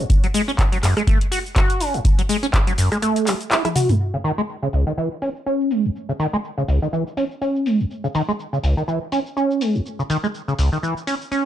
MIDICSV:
0, 0, Header, 1, 3, 480
1, 0, Start_track
1, 0, Tempo, 487805
1, 95, Time_signature, 4, 2, 24, 8
1, 11269, End_track
2, 0, Start_track
2, 0, Title_t, "Acid bass"
2, 0, Program_c, 0, 38
2, 233, Note_on_c, 0, 54, 78
2, 266, Note_off_c, 0, 54, 0
2, 337, Note_on_c, 0, 56, 104
2, 411, Note_off_c, 0, 56, 0
2, 473, Note_on_c, 0, 61, 101
2, 506, Note_off_c, 0, 61, 0
2, 711, Note_on_c, 0, 54, 76
2, 769, Note_off_c, 0, 54, 0
2, 816, Note_on_c, 0, 42, 77
2, 927, Note_off_c, 0, 42, 0
2, 951, Note_on_c, 0, 56, 76
2, 1008, Note_off_c, 0, 56, 0
2, 1056, Note_on_c, 0, 57, 88
2, 1167, Note_off_c, 0, 57, 0
2, 1294, Note_on_c, 0, 66, 80
2, 1369, Note_off_c, 0, 66, 0
2, 1534, Note_on_c, 0, 66, 83
2, 1773, Note_on_c, 0, 61, 98
2, 1788, Note_off_c, 0, 66, 0
2, 1909, Note_on_c, 0, 42, 79
2, 1924, Note_off_c, 0, 61, 0
2, 1968, Note_off_c, 0, 42, 0
2, 2150, Note_on_c, 0, 54, 80
2, 2185, Note_off_c, 0, 54, 0
2, 2255, Note_on_c, 0, 56, 100
2, 2329, Note_off_c, 0, 56, 0
2, 2390, Note_on_c, 0, 61, 101
2, 2425, Note_off_c, 0, 61, 0
2, 2630, Note_on_c, 0, 54, 76
2, 2688, Note_off_c, 0, 54, 0
2, 2735, Note_on_c, 0, 42, 75
2, 2847, Note_off_c, 0, 42, 0
2, 2870, Note_on_c, 0, 56, 74
2, 2928, Note_off_c, 0, 56, 0
2, 2975, Note_on_c, 0, 57, 88
2, 3214, Note_on_c, 0, 54, 105
2, 3229, Note_off_c, 0, 57, 0
2, 3289, Note_off_c, 0, 54, 0
2, 3456, Note_on_c, 0, 64, 85
2, 3567, Note_off_c, 0, 64, 0
2, 3590, Note_on_c, 0, 64, 99
2, 3625, Note_off_c, 0, 64, 0
2, 3695, Note_on_c, 0, 66, 75
2, 3829, Note_on_c, 0, 54, 76
2, 3844, Note_off_c, 0, 66, 0
2, 3887, Note_off_c, 0, 54, 0
2, 4070, Note_on_c, 0, 49, 74
2, 4105, Note_off_c, 0, 49, 0
2, 4174, Note_on_c, 0, 51, 99
2, 4249, Note_off_c, 0, 51, 0
2, 4310, Note_on_c, 0, 56, 98
2, 4345, Note_off_c, 0, 56, 0
2, 4551, Note_on_c, 0, 49, 73
2, 4608, Note_off_c, 0, 49, 0
2, 4655, Note_on_c, 0, 37, 73
2, 4767, Note_off_c, 0, 37, 0
2, 4791, Note_on_c, 0, 51, 72
2, 4848, Note_off_c, 0, 51, 0
2, 4896, Note_on_c, 0, 52, 84
2, 5007, Note_off_c, 0, 52, 0
2, 5136, Note_on_c, 0, 61, 73
2, 5210, Note_off_c, 0, 61, 0
2, 5376, Note_on_c, 0, 61, 79
2, 5616, Note_on_c, 0, 56, 99
2, 5631, Note_off_c, 0, 61, 0
2, 5752, Note_on_c, 0, 37, 76
2, 5766, Note_off_c, 0, 56, 0
2, 5809, Note_off_c, 0, 37, 0
2, 5992, Note_on_c, 0, 49, 77
2, 6026, Note_off_c, 0, 49, 0
2, 6096, Note_on_c, 0, 51, 101
2, 6170, Note_off_c, 0, 51, 0
2, 6232, Note_on_c, 0, 56, 97
2, 6266, Note_off_c, 0, 56, 0
2, 6471, Note_on_c, 0, 49, 75
2, 6528, Note_off_c, 0, 49, 0
2, 6576, Note_on_c, 0, 37, 73
2, 6687, Note_off_c, 0, 37, 0
2, 6712, Note_on_c, 0, 51, 72
2, 6769, Note_off_c, 0, 51, 0
2, 6816, Note_on_c, 0, 52, 85
2, 6927, Note_off_c, 0, 52, 0
2, 7056, Note_on_c, 0, 61, 72
2, 7130, Note_off_c, 0, 61, 0
2, 7296, Note_on_c, 0, 61, 78
2, 7536, Note_on_c, 0, 56, 100
2, 7551, Note_off_c, 0, 61, 0
2, 7672, Note_on_c, 0, 37, 76
2, 7686, Note_off_c, 0, 56, 0
2, 7729, Note_off_c, 0, 37, 0
2, 7912, Note_on_c, 0, 49, 79
2, 7946, Note_off_c, 0, 49, 0
2, 8017, Note_on_c, 0, 51, 102
2, 8091, Note_off_c, 0, 51, 0
2, 8152, Note_on_c, 0, 56, 97
2, 8186, Note_off_c, 0, 56, 0
2, 8392, Note_on_c, 0, 49, 76
2, 8449, Note_off_c, 0, 49, 0
2, 8496, Note_on_c, 0, 37, 75
2, 8608, Note_off_c, 0, 37, 0
2, 8631, Note_on_c, 0, 51, 73
2, 8689, Note_off_c, 0, 51, 0
2, 8736, Note_on_c, 0, 52, 84
2, 8848, Note_off_c, 0, 52, 0
2, 8976, Note_on_c, 0, 61, 77
2, 9050, Note_off_c, 0, 61, 0
2, 9216, Note_on_c, 0, 61, 79
2, 9456, Note_on_c, 0, 56, 98
2, 9470, Note_off_c, 0, 61, 0
2, 9592, Note_on_c, 0, 37, 76
2, 9607, Note_off_c, 0, 56, 0
2, 9649, Note_off_c, 0, 37, 0
2, 9832, Note_on_c, 0, 49, 75
2, 9866, Note_off_c, 0, 49, 0
2, 9936, Note_on_c, 0, 51, 101
2, 10010, Note_off_c, 0, 51, 0
2, 10071, Note_on_c, 0, 56, 99
2, 10106, Note_off_c, 0, 56, 0
2, 10311, Note_on_c, 0, 49, 75
2, 10369, Note_off_c, 0, 49, 0
2, 10416, Note_on_c, 0, 37, 75
2, 10527, Note_off_c, 0, 37, 0
2, 10551, Note_on_c, 0, 51, 73
2, 10608, Note_off_c, 0, 51, 0
2, 10655, Note_on_c, 0, 52, 84
2, 10767, Note_off_c, 0, 52, 0
2, 10896, Note_on_c, 0, 61, 75
2, 10970, Note_off_c, 0, 61, 0
2, 11134, Note_on_c, 0, 61, 80
2, 11269, Note_off_c, 0, 61, 0
2, 11269, End_track
3, 0, Start_track
3, 0, Title_t, "Drums"
3, 95, Note_on_c, 9, 36, 110
3, 97, Note_on_c, 9, 42, 84
3, 102, Note_on_c, 9, 82, 48
3, 193, Note_off_c, 9, 36, 0
3, 196, Note_off_c, 9, 42, 0
3, 201, Note_off_c, 9, 82, 0
3, 233, Note_on_c, 9, 42, 54
3, 238, Note_on_c, 9, 82, 34
3, 331, Note_off_c, 9, 42, 0
3, 336, Note_off_c, 9, 82, 0
3, 337, Note_on_c, 9, 46, 98
3, 342, Note_on_c, 9, 82, 81
3, 436, Note_off_c, 9, 46, 0
3, 441, Note_off_c, 9, 82, 0
3, 478, Note_on_c, 9, 82, 35
3, 575, Note_on_c, 9, 36, 101
3, 577, Note_off_c, 9, 82, 0
3, 578, Note_on_c, 9, 42, 83
3, 581, Note_on_c, 9, 39, 116
3, 583, Note_on_c, 9, 82, 47
3, 673, Note_off_c, 9, 36, 0
3, 676, Note_off_c, 9, 42, 0
3, 679, Note_off_c, 9, 39, 0
3, 681, Note_off_c, 9, 82, 0
3, 713, Note_on_c, 9, 42, 52
3, 719, Note_on_c, 9, 82, 33
3, 812, Note_off_c, 9, 42, 0
3, 817, Note_off_c, 9, 82, 0
3, 818, Note_on_c, 9, 37, 61
3, 818, Note_on_c, 9, 46, 102
3, 821, Note_on_c, 9, 39, 62
3, 823, Note_on_c, 9, 82, 86
3, 916, Note_off_c, 9, 37, 0
3, 916, Note_off_c, 9, 46, 0
3, 919, Note_off_c, 9, 39, 0
3, 921, Note_off_c, 9, 82, 0
3, 953, Note_on_c, 9, 37, 80
3, 953, Note_on_c, 9, 42, 38
3, 958, Note_on_c, 9, 82, 36
3, 1051, Note_off_c, 9, 37, 0
3, 1051, Note_off_c, 9, 42, 0
3, 1055, Note_on_c, 9, 36, 112
3, 1057, Note_off_c, 9, 82, 0
3, 1057, Note_on_c, 9, 42, 83
3, 1062, Note_on_c, 9, 82, 47
3, 1153, Note_off_c, 9, 36, 0
3, 1155, Note_off_c, 9, 42, 0
3, 1161, Note_off_c, 9, 82, 0
3, 1193, Note_on_c, 9, 42, 56
3, 1291, Note_off_c, 9, 42, 0
3, 1297, Note_on_c, 9, 46, 101
3, 1302, Note_on_c, 9, 82, 85
3, 1396, Note_off_c, 9, 46, 0
3, 1401, Note_off_c, 9, 82, 0
3, 1437, Note_on_c, 9, 82, 34
3, 1534, Note_on_c, 9, 36, 101
3, 1536, Note_off_c, 9, 82, 0
3, 1536, Note_on_c, 9, 42, 81
3, 1539, Note_on_c, 9, 39, 113
3, 1541, Note_on_c, 9, 82, 47
3, 1633, Note_off_c, 9, 36, 0
3, 1634, Note_off_c, 9, 42, 0
3, 1638, Note_off_c, 9, 39, 0
3, 1640, Note_off_c, 9, 82, 0
3, 1671, Note_on_c, 9, 42, 54
3, 1677, Note_on_c, 9, 82, 32
3, 1770, Note_off_c, 9, 42, 0
3, 1775, Note_off_c, 9, 82, 0
3, 1776, Note_on_c, 9, 46, 102
3, 1781, Note_on_c, 9, 82, 83
3, 1874, Note_off_c, 9, 46, 0
3, 1879, Note_off_c, 9, 82, 0
3, 1911, Note_on_c, 9, 42, 38
3, 1917, Note_on_c, 9, 82, 34
3, 2010, Note_off_c, 9, 42, 0
3, 2014, Note_on_c, 9, 36, 115
3, 2015, Note_off_c, 9, 82, 0
3, 2017, Note_on_c, 9, 42, 88
3, 2022, Note_on_c, 9, 82, 47
3, 2113, Note_off_c, 9, 36, 0
3, 2115, Note_off_c, 9, 42, 0
3, 2120, Note_off_c, 9, 82, 0
3, 2152, Note_on_c, 9, 42, 58
3, 2157, Note_on_c, 9, 82, 32
3, 2250, Note_off_c, 9, 42, 0
3, 2255, Note_off_c, 9, 82, 0
3, 2256, Note_on_c, 9, 46, 101
3, 2261, Note_on_c, 9, 82, 82
3, 2355, Note_off_c, 9, 46, 0
3, 2360, Note_off_c, 9, 82, 0
3, 2391, Note_on_c, 9, 42, 38
3, 2397, Note_on_c, 9, 82, 35
3, 2490, Note_off_c, 9, 42, 0
3, 2494, Note_on_c, 9, 36, 100
3, 2495, Note_off_c, 9, 82, 0
3, 2496, Note_on_c, 9, 42, 83
3, 2499, Note_on_c, 9, 39, 122
3, 2501, Note_on_c, 9, 82, 47
3, 2592, Note_off_c, 9, 36, 0
3, 2594, Note_off_c, 9, 42, 0
3, 2598, Note_off_c, 9, 39, 0
3, 2600, Note_off_c, 9, 82, 0
3, 2631, Note_on_c, 9, 42, 55
3, 2636, Note_on_c, 9, 82, 32
3, 2729, Note_off_c, 9, 42, 0
3, 2734, Note_off_c, 9, 82, 0
3, 2736, Note_on_c, 9, 46, 106
3, 2741, Note_on_c, 9, 82, 83
3, 2834, Note_off_c, 9, 46, 0
3, 2839, Note_off_c, 9, 82, 0
3, 2871, Note_on_c, 9, 37, 77
3, 2871, Note_on_c, 9, 42, 38
3, 2876, Note_on_c, 9, 82, 34
3, 2969, Note_off_c, 9, 37, 0
3, 2969, Note_off_c, 9, 42, 0
3, 2974, Note_off_c, 9, 82, 0
3, 2976, Note_on_c, 9, 42, 84
3, 2981, Note_on_c, 9, 82, 47
3, 3074, Note_off_c, 9, 42, 0
3, 3079, Note_off_c, 9, 82, 0
3, 3111, Note_on_c, 9, 42, 57
3, 3116, Note_on_c, 9, 82, 34
3, 3209, Note_off_c, 9, 42, 0
3, 3214, Note_off_c, 9, 82, 0
3, 3215, Note_on_c, 9, 46, 100
3, 3219, Note_on_c, 9, 39, 63
3, 3221, Note_on_c, 9, 82, 81
3, 3314, Note_off_c, 9, 46, 0
3, 3317, Note_off_c, 9, 39, 0
3, 3319, Note_off_c, 9, 82, 0
3, 3351, Note_on_c, 9, 42, 39
3, 3357, Note_on_c, 9, 82, 36
3, 3450, Note_off_c, 9, 42, 0
3, 3455, Note_off_c, 9, 82, 0
3, 3456, Note_on_c, 9, 46, 57
3, 3459, Note_on_c, 9, 39, 120
3, 3461, Note_on_c, 9, 82, 48
3, 3554, Note_off_c, 9, 46, 0
3, 3557, Note_off_c, 9, 39, 0
3, 3559, Note_off_c, 9, 82, 0
3, 3591, Note_on_c, 9, 37, 78
3, 3591, Note_on_c, 9, 42, 55
3, 3591, Note_on_c, 9, 48, 50
3, 3596, Note_on_c, 9, 82, 31
3, 3689, Note_off_c, 9, 37, 0
3, 3689, Note_off_c, 9, 42, 0
3, 3689, Note_off_c, 9, 48, 0
3, 3695, Note_off_c, 9, 82, 0
3, 3696, Note_on_c, 9, 46, 101
3, 3696, Note_on_c, 9, 47, 77
3, 3701, Note_on_c, 9, 82, 79
3, 3794, Note_off_c, 9, 46, 0
3, 3794, Note_off_c, 9, 47, 0
3, 3800, Note_off_c, 9, 82, 0
3, 3831, Note_on_c, 9, 42, 39
3, 3831, Note_on_c, 9, 45, 82
3, 3836, Note_on_c, 9, 82, 34
3, 3929, Note_off_c, 9, 42, 0
3, 3929, Note_off_c, 9, 45, 0
3, 3935, Note_off_c, 9, 82, 0
3, 3941, Note_on_c, 9, 82, 42
3, 4039, Note_off_c, 9, 82, 0
3, 4077, Note_on_c, 9, 82, 30
3, 4175, Note_off_c, 9, 82, 0
3, 4176, Note_on_c, 9, 46, 99
3, 4182, Note_on_c, 9, 82, 74
3, 4275, Note_off_c, 9, 46, 0
3, 4280, Note_off_c, 9, 82, 0
3, 4421, Note_on_c, 9, 82, 43
3, 4519, Note_off_c, 9, 82, 0
3, 4556, Note_on_c, 9, 82, 29
3, 4655, Note_off_c, 9, 82, 0
3, 4655, Note_on_c, 9, 46, 100
3, 4661, Note_on_c, 9, 82, 77
3, 4754, Note_off_c, 9, 46, 0
3, 4759, Note_off_c, 9, 82, 0
3, 4797, Note_on_c, 9, 82, 32
3, 4895, Note_off_c, 9, 82, 0
3, 4902, Note_on_c, 9, 82, 42
3, 5000, Note_off_c, 9, 82, 0
3, 5136, Note_on_c, 9, 46, 101
3, 5141, Note_on_c, 9, 82, 76
3, 5234, Note_off_c, 9, 46, 0
3, 5240, Note_off_c, 9, 82, 0
3, 5277, Note_on_c, 9, 82, 31
3, 5376, Note_off_c, 9, 82, 0
3, 5382, Note_on_c, 9, 82, 42
3, 5480, Note_off_c, 9, 82, 0
3, 5517, Note_on_c, 9, 82, 29
3, 5616, Note_off_c, 9, 82, 0
3, 5617, Note_on_c, 9, 46, 96
3, 5622, Note_on_c, 9, 82, 73
3, 5715, Note_off_c, 9, 46, 0
3, 5720, Note_off_c, 9, 82, 0
3, 5757, Note_on_c, 9, 82, 30
3, 5856, Note_off_c, 9, 82, 0
3, 5863, Note_on_c, 9, 82, 42
3, 5961, Note_off_c, 9, 82, 0
3, 5998, Note_on_c, 9, 82, 30
3, 6097, Note_off_c, 9, 82, 0
3, 6098, Note_on_c, 9, 46, 100
3, 6103, Note_on_c, 9, 82, 72
3, 6196, Note_off_c, 9, 46, 0
3, 6201, Note_off_c, 9, 82, 0
3, 6238, Note_on_c, 9, 82, 30
3, 6337, Note_off_c, 9, 82, 0
3, 6342, Note_on_c, 9, 82, 41
3, 6441, Note_off_c, 9, 82, 0
3, 6478, Note_on_c, 9, 82, 29
3, 6576, Note_off_c, 9, 82, 0
3, 6578, Note_on_c, 9, 46, 108
3, 6583, Note_on_c, 9, 82, 72
3, 6676, Note_off_c, 9, 46, 0
3, 6681, Note_off_c, 9, 82, 0
3, 6719, Note_on_c, 9, 82, 30
3, 6817, Note_off_c, 9, 82, 0
3, 6823, Note_on_c, 9, 82, 40
3, 6921, Note_off_c, 9, 82, 0
3, 6959, Note_on_c, 9, 82, 30
3, 7057, Note_off_c, 9, 82, 0
3, 7058, Note_on_c, 9, 46, 104
3, 7063, Note_on_c, 9, 82, 71
3, 7156, Note_off_c, 9, 46, 0
3, 7161, Note_off_c, 9, 82, 0
3, 7198, Note_on_c, 9, 82, 31
3, 7297, Note_off_c, 9, 82, 0
3, 7298, Note_on_c, 9, 46, 61
3, 7303, Note_on_c, 9, 82, 39
3, 7396, Note_off_c, 9, 46, 0
3, 7402, Note_off_c, 9, 82, 0
3, 7438, Note_on_c, 9, 82, 28
3, 7536, Note_off_c, 9, 82, 0
3, 7536, Note_on_c, 9, 46, 103
3, 7542, Note_on_c, 9, 82, 69
3, 7635, Note_off_c, 9, 46, 0
3, 7640, Note_off_c, 9, 82, 0
3, 7677, Note_on_c, 9, 82, 31
3, 7776, Note_off_c, 9, 82, 0
3, 7782, Note_on_c, 9, 82, 40
3, 7881, Note_off_c, 9, 82, 0
3, 7917, Note_on_c, 9, 82, 29
3, 8016, Note_off_c, 9, 82, 0
3, 8016, Note_on_c, 9, 46, 101
3, 8022, Note_on_c, 9, 82, 69
3, 8115, Note_off_c, 9, 46, 0
3, 8120, Note_off_c, 9, 82, 0
3, 8158, Note_on_c, 9, 82, 30
3, 8256, Note_off_c, 9, 82, 0
3, 8262, Note_on_c, 9, 82, 41
3, 8361, Note_off_c, 9, 82, 0
3, 8398, Note_on_c, 9, 82, 28
3, 8496, Note_off_c, 9, 82, 0
3, 8497, Note_on_c, 9, 46, 106
3, 8502, Note_on_c, 9, 82, 73
3, 8595, Note_off_c, 9, 46, 0
3, 8601, Note_off_c, 9, 82, 0
3, 8637, Note_on_c, 9, 82, 30
3, 8736, Note_off_c, 9, 82, 0
3, 8742, Note_on_c, 9, 82, 39
3, 8840, Note_off_c, 9, 82, 0
3, 8975, Note_on_c, 9, 46, 102
3, 8980, Note_on_c, 9, 82, 70
3, 9074, Note_off_c, 9, 46, 0
3, 9079, Note_off_c, 9, 82, 0
3, 9117, Note_on_c, 9, 82, 30
3, 9215, Note_off_c, 9, 82, 0
3, 9222, Note_on_c, 9, 82, 40
3, 9321, Note_off_c, 9, 82, 0
3, 9357, Note_on_c, 9, 82, 28
3, 9456, Note_off_c, 9, 82, 0
3, 9456, Note_on_c, 9, 46, 103
3, 9462, Note_on_c, 9, 82, 73
3, 9555, Note_off_c, 9, 46, 0
3, 9560, Note_off_c, 9, 82, 0
3, 9597, Note_on_c, 9, 82, 31
3, 9695, Note_off_c, 9, 82, 0
3, 9702, Note_on_c, 9, 82, 41
3, 9800, Note_off_c, 9, 82, 0
3, 9837, Note_on_c, 9, 82, 29
3, 9935, Note_off_c, 9, 82, 0
3, 9936, Note_on_c, 9, 46, 100
3, 9941, Note_on_c, 9, 82, 70
3, 10035, Note_off_c, 9, 46, 0
3, 10040, Note_off_c, 9, 82, 0
3, 10077, Note_on_c, 9, 82, 30
3, 10175, Note_off_c, 9, 82, 0
3, 10181, Note_on_c, 9, 82, 42
3, 10280, Note_off_c, 9, 82, 0
3, 10317, Note_on_c, 9, 82, 28
3, 10416, Note_off_c, 9, 82, 0
3, 10417, Note_on_c, 9, 46, 108
3, 10422, Note_on_c, 9, 82, 75
3, 10515, Note_off_c, 9, 46, 0
3, 10520, Note_off_c, 9, 82, 0
3, 10557, Note_on_c, 9, 82, 31
3, 10655, Note_off_c, 9, 82, 0
3, 10661, Note_on_c, 9, 82, 43
3, 10760, Note_off_c, 9, 82, 0
3, 10797, Note_on_c, 9, 82, 30
3, 10895, Note_off_c, 9, 82, 0
3, 10897, Note_on_c, 9, 46, 107
3, 10902, Note_on_c, 9, 82, 71
3, 10995, Note_off_c, 9, 46, 0
3, 11000, Note_off_c, 9, 82, 0
3, 11037, Note_on_c, 9, 82, 30
3, 11135, Note_off_c, 9, 82, 0
3, 11136, Note_on_c, 9, 46, 59
3, 11141, Note_on_c, 9, 82, 42
3, 11235, Note_off_c, 9, 46, 0
3, 11240, Note_off_c, 9, 82, 0
3, 11269, End_track
0, 0, End_of_file